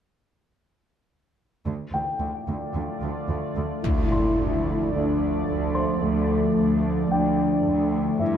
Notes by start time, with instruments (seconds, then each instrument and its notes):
1.66 cello section D2, ambient pad D3 A3 F4 D5
1.93 cello section D2, grand piano G5
2.20 cello section D2
2.48 cello section D2
2.75 cello section D2
3.03 cello section D2
3.29 cello section D2
3.56 cello section D2
3.84 cello section D2, ambient pad D3 F3 A3 D5, french horn section E4, impact
4.12 grand piano C6
4.38 cello section D2
4.92 cello section D2, french horn section D4
5.47 cello section D2
5.75 grand piano C5 C6
6.01 cello section D2, french horn section A3
6.57 cello section D2
7.11 cello section D2, french horn section D4, grand piano G5
7.66 cello section D2
8.19 cello section G2, ambient pad G3 G4 D5, french horn section E4, grand piano E5